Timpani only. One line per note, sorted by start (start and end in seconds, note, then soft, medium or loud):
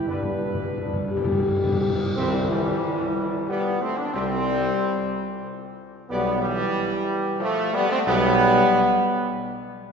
0.06 0.12 G2 medium
0.14 0.21 G2 medium
0.23 0.29 G2 medium
0.30 0.37 G2 medium
0.38 0.44 G2 medium
0.45 0.53 G2 medium
0.54 0.61 G2 medium
0.62 0.69 G2 medium
0.70 0.76 G2 medium
0.77 0.84 G2 medium
0.86 0.92 G2 medium
0.93 1.00 G2 medium
1.01 1.07 G2 medium
1.08 1.16 G2 medium
1.17 1.23 G2 loud
1.24 1.31 G2 loud
1.32 1.38 G2 loud
1.39 1.47 G2 loud
1.48 1.55 G2 loud
1.56 1.63 G2 loud
1.64 1.71 G2 loud
1.72 1.79 G2 loud
1.81 1.87 G2 loud
1.88 1.95 G2 loud
1.96 2.02 G2 loud
2.04 2.11 G2 loud
2.18 3.13 C3 loud